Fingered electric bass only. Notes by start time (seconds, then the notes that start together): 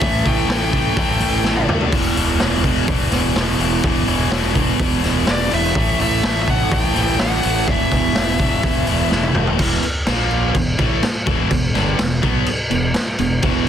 0.01 A1
0.26 A1
0.48 A1
0.96 A1
1.20 A1
1.43 A1
1.67 D2
1.92 E1
2.16 E1
2.41 E1
2.88 E1
3.12 E1
3.36 E1
3.59 E1
3.84 E1
4.07 E1
4.31 E1
4.79 E1
5.04 E1
5.28 E1
5.53 E1
5.75 A1
6.00 A1
6.24 A1
6.71 A1
6.97 A1
7.21 A1
7.45 A1
7.68 E1
7.92 E1
8.16 E1
8.64 E1
8.87 E1
9.12 E1
9.35 E1
9.60 E1
9.84 muted fingered electric bass stroke
10.08 A#1
10.55 E1
10.79 A1
11.03 muted fingered electric bass stroke
11.27 E1
11.51 E1
11.75 G1
11.99 E1
12.23 B1
12.72 E1
13.19 E1
13.43 E1